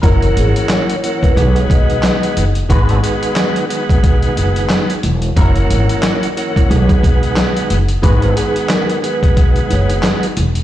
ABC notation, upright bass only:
X:1
M:4/4
L:1/16
Q:"Swing 16ths" 1/4=90
K:G#m
V:1 name="Upright bass" clef=bass
F,,,2 G,,, z4 A,,, B,,,2 B,,,2 z2 F,,,2 | G,,,2 z4 z B,,,3 F,,,2 z2 E,,,2 | F,,,2 G,,, z4 A,,, B,,,2 B,,,2 z2 F,,,2 | G,,,2 z4 z B,,,3 F,,,2 z2 E,,,2 |]